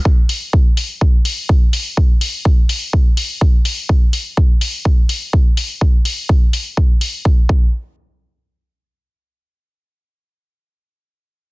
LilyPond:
\new DrumStaff \with { instrumentName = "Drums" } \drummode { \time 4/4 \tempo 4 = 125 bd8 hho8 bd8 hho8 bd8 hho8 bd8 hho8 | bd8 hho8 bd8 hho8 bd8 hho8 bd8 hho8 | bd8 hho8 bd8 hho8 bd8 hho8 bd8 hho8 | bd8 hho8 bd8 hho8 bd8 hho8 bd8 bd8 |
r4 r4 r4 r4 | r4 r4 r4 r4 | }